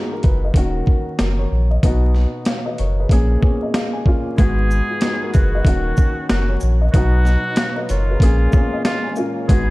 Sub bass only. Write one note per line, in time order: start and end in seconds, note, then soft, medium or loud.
0.24 0.51 F#1 medium
0.54 0.82 D#1 loud
1.20 1.46 F#1 medium
1.52 1.78 A#1 medium
1.83 2.26 B1 loud
2.79 3.06 F#1 medium
3.10 3.37 A#1 loud
4.39 4.82 G#1 loud
5.35 5.61 F#1 medium
5.65 5.92 D#1 loud
6.31 6.57 F#1 medium
6.63 6.89 A#1 loud
6.94 7.37 B1 loud
7.90 8.17 F#1 medium
8.20 8.48 A#1 loud
9.49 9.70 G#1 loud